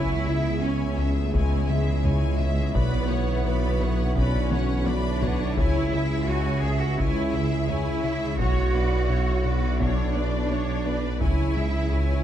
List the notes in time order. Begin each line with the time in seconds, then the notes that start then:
Already playing: C#2 C#3 E3 G#3 B3 E4 G#4 C#5 E5 G#5
0.26 C#3 G#3 G#4 E5
0.62 C#2 C#4 E4 C#5 G#5
0.87 C#4
0.98 C#2 C#4 G#4 E5
1.10 A3
1.33 C#2 C#3 G#3 E4 C#5 G#5, taiko
1.69 C#3 G#3 G#4 E5
2.04 C#3 G#3 E4 C#5 G#5, taiko low-mid
2.39 C#3 G#3 G#4 E5
2.74 B1 B2 D3 F#3 B3 F#4 B4 D5 B5, taiko
3.10 B3 F#4 B4 C#5 F#5
3.45 B2 B4 D5 B5
3.81 B2 B4 C#5 F#5
4.16 B2 B3 C#4 B4 D5 B5, taiko
4.51 B3 F#4 B4 C#5 F#5, taiko high
4.86 B3 D4 F#4 B4 D5 B5, taiko high
5.21 B3 F#4 B4 C#5 F#5, taiko low
5.56 C#2 C#3 G#3 C#4 E4 G#4 C#5 E5 G#5, taiko
5.92 C#3 G#3 G#4 E5
6.28 C#2 E4 F#4 C#5 G#5
6.62 C#2 C#4 G#4 E5
6.80 F#4
6.98 C#2 C#3 E4 C#5 G#5, taiko
7.33 C#3 G#3 G#4 E5
7.68 C#3 G#3 E4 C#5 G#5, taiko low-mid
8.04 C#3 G#3 G#4 E5
8.38 B1 B2 D3 F#3 B3 D4 F#4 C#5, taiko
8.74 B3 F#4 B4 D5
9.09 B2 C#5
9.45 B2 B4 D5
9.80 B2 B3 D4 C#5, taiko
10.15 B3 F#4 B4 D5
10.51 B3 F#4 C#5
10.85 B3 F#4 B4 D5
11.21 C#2 C#3 E3 G#3 E4 G#4 C#5 G#5, taiko
11.56 C#3 G#3 G#4 E5
11.91 C#2 E4 C#5 G#5